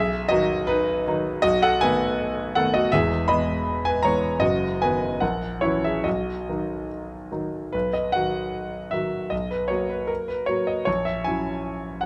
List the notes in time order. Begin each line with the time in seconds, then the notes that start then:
Already playing: B1 G#4 E5
0.29 D#3 F#3 D#4 F#4 D#5
0.67 D#4 B4
1.07 D#3 F#3 D#4
1.42 B1 F#4 D#5
1.62 A4 F#5
1.81 D#3 A3 B3 B4 G#5
2.55 D#3 A3 B3 A4 F#5
2.74 F#4 D#5
2.92 E1 E2 G#4 E5
3.28 E3 G#3 B3 D#5 B5
3.85 B4 G#5
4.03 E3 G#3 B3 C#5 A#5
4.39 F#1 F#2 F#4 D#5
4.82 D#3 F#3 B3 B4 G#5
5.20 A#1 A#4 F#5
5.61 E3 F#3 C#4 E4 C#5
5.84 G#4 E5
6.04 B1 F#4 D#5
6.49 D#3 F#3 D#4
7.32 D#3 F#3 D#4
7.73 B1 B4
7.93 D#5
8.12 D#3 F#3 F#4 F#5
8.91 D#3 F#3 F#4 E5
9.30 B1 D#5
9.51 B4
9.68 F#3 A#3 F#4 C#5
9.89 B4
10.07 A#4
10.28 B4
10.46 F#3 A#3 F#4 C#5
10.67 D#5
10.85 A#1 C#5
11.05 E5
11.24 F#3 C#4 E4 G#5
12.01 F#5